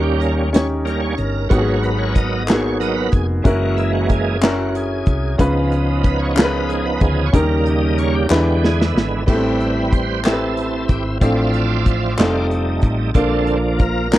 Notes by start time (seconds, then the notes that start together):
Already playing: D#2 D#3 G3 A#3 C#4 D#4 G4 A#4
0.04 G4
0.20 A#4, closed hi-hat
0.53 C#4 D#4 G4 C#5, snare, closed hi-hat
0.85 G3 A#3 C#4 A#4, closed hi-hat
1.01 C#5
1.17 G1 A#4, closed hi-hat
1.49 G#1 G#2 F#3 B3 D#4 F#4 G4 A#4 C#5, kick, closed hi-hat
1.58 G#4
1.83 B4, closed hi-hat
1.99 C#5
2.15 D#5, kick, closed hi-hat
2.48 A#3 D#4 F#4 G#4 C#5, snare, clap, closed hi-hat
2.54 B3
2.80 F#3 B3 A#4 D#5, closed hi-hat
2.96 B4
3.12 F1 G#4, kick, closed hi-hat
3.42 F#1 E3 G#3 A#3 C#4 E4 F#4 A#4, kick, closed hi-hat
3.77 E4, closed hi-hat
3.93 F#4
4.09 G#4, kick, closed hi-hat
4.41 C#4 E4 F#4 A#4, snare, clap, closed hi-hat
4.75 G#4, closed hi-hat
5.06 C2, kick, closed hi-hat
5.38 C#2 C#3 F3 B3 C#4 D#4 F4 G#4 B4, kick, closed hi-hat
5.72 closed hi-hat
6.03 B4, kick, closed hi-hat
6.19 C#5
6.36 C#4 F4 G#4 A#4 B4, snare, clap, closed hi-hat
6.44 B4
6.69 G#4, closed hi-hat
6.86 B4
7.00 D2 C#3 F3 B3 G#4, kick, closed hi-hat
7.26 C#5
7.33 D#2 C#3 D#3 G3 A#3 C#4 D#4 G4 A#4, kick, closed hi-hat
7.65 D#5, closed hi-hat
7.98 C#5, closed hi-hat
8.15 G4
8.29 E2 D3 E3 G#3 B3 D4 E4 G#4 B4, snare, clap
8.64 G#4, snare
8.80 E4, snare
8.95 G#1, snare
9.26 A1 A2 G3 B3 C4 E4 G4 A4 B4, kick, crash
9.34 C4
9.60 closed hi-hat
9.93 C5, kick, closed hi-hat
10.24 C4 E4 G4 A4, snare, clap, closed hi-hat
10.33 B4
10.57 closed hi-hat
10.88 G#1 G4, kick, closed hi-hat
11.20 A1 A2 F3 C4 D4 F4 A4 D5 E5, kick, closed hi-hat
11.54 closed hi-hat
11.86 kick, closed hi-hat
12.18 F1 G3 A3 C4 D#4 F4 A4, snare, clap, closed hi-hat
12.51 closed hi-hat
12.82 A1, kick, closed hi-hat
13.14 A#1 A#2 D3 F3 A#3 C4 D4 F4 A4, kick, closed hi-hat
13.47 closed hi-hat
13.79 A#4, kick, closed hi-hat
14.11 A#3 D4 F4 G4 A#4, snare, clap, closed hi-hat